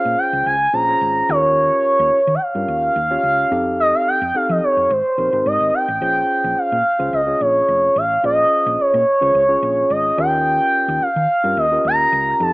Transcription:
Already playing: C#4 F4 G#4 C5 F5
0.05 A#2
0.18 G5
0.33 C#2
0.46 C#2 G#5
0.73 A#1 C#4 F4 G#4 C5 A#5
0.87 C#4 F4 G#4 C5
1.01 G#1
1.29 D#2 C#4 F4 G4 A4 C#5
1.36 A#4
1.99 D#2
2.13 muted fingered electric bass stroke
2.27 D#3
2.35 G5
2.42 F5
2.55 G2 C#4 F4 G4 A#4
2.68 D#2
2.96 D#2
3.10 C#4 F4 G4 C#5
3.23 C#2
3.51 F2 C4 D#4 G4 A4
3.80 D#5
3.95 F5
4.08 G5
4.22 F2
4.35 C4 D#4 G4 A4 F5
4.49 F3 D#5
4.64 C#5
4.77 F2
4.90 G#1 C5
5.18 A#1 C4 D#4 G4 A#4
5.33 G#1 C4 D#4 G4 A#4
5.46 G#2 D#5
5.60 G#1
5.74 G5
5.88 A1
6.01 A#1 C#4 F4 G#4 C5
6.44 A#1
6.57 F5, muted fingered electric bass stroke
6.72 A#2
6.99 C#2 C#4 F4 G#4 C5
7.13 C#2 D#5
7.27 C#4 F4 G#4 C#5
7.41 A#1 C#5
7.68 F1
7.96 A1 F5
8.23 A#1 C#4 F4 G#4 C5 D#5
8.66 A#1
8.80 C#5, muted fingered electric bass stroke
8.94 A#2
9.21 C#2 C#4 F4 G#4 C5
9.35 C#2
9.49 C#4 F4 G#4 C#5
9.62 A#1
9.90 G#1 D#5
10.18 D#2 C#4 F4 G4 A#4 G5
10.88 D#2
11.02 F5, muted fingered electric bass stroke
11.16 D#3
11.44 G2 C#4 F4 G4 A#4
11.57 D#2 D#5
11.72 C#4 F4 G4 A#4
11.85 D#2 A#5
12.12 C#2
12.40 F2 C4 D#4 G4 A4 A5

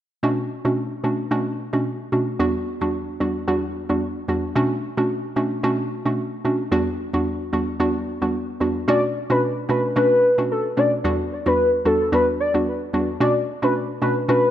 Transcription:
0.23 B2 A3 C#4 D4 F#4
0.65 B2 A3 C#4 D4 F#4
1.04 B2 A3 C#4 D4 F#4
1.31 B2 A3 C#4 D4 F#4
1.73 B2 A3 C#4 D4 F#4
2.12 B2 A3 C#4 D4 F#4
2.39 E2 G3 B3 D4 F#4
2.81 E2 G3 B3 D4 F#4
3.20 E2 G3 B3 D4 F#4
3.48 E2 G3 B3 D4 F#4
3.89 E2 G3 B3 D4 F#4
4.28 E2 G3 B3 D4 F#4
4.56 B2 A3 C#4 D4 F#4
4.97 B2 A3 C#4 D4 F#4
5.36 B2 A3 C#4 D4 F#4
5.63 B2 A3 C#4 D4 F#4
6.05 B2 A3 C#4 D4 F#4
6.45 B2 A3 C#4 D4 F#4
6.72 E2 G3 B3 D4 F#4
7.14 E2 G3 B3 D4 F#4
7.53 E2 G3 B3 D4 F#4
7.80 E2 G3 B3 D4 F#4
8.22 E2 G3 B3 D4 F#4
8.60 E2 G3 B3 D4 F#4
8.88 B2 A3 C#4 D4 F#4 D5
9.30 B2 A3 C#4 D4 F#4 B4
9.69 B2 A3 C#4 D4 F#4 B4
9.96 B2 A3 C#4 D4 F#4 B4
10.38 B2 A3 C#4 D4 F#4
10.51 A4
10.77 B2 A3 C#4 D4 F#4 D5
11.04 E2 G3 B3 D4 F#4
11.46 E2 G3 B3 D4 F#4 B4
11.85 E2 G3 B3 D4 F#4 A4
12.12 E2 G3 B3 D4 F#4 B4
12.40 D5
12.54 E2 G3 B3 D4 F#4
12.93 E2 G3 B3 D4 F#4
13.20 B2 A3 C#4 D4 F#4 D5
13.62 B2 A3 C#4 D4 F#4 B4
14.02 B2 A3 C#4 D4 F#4 B4
14.28 B2 A3 C#4 D4 F#4 B4

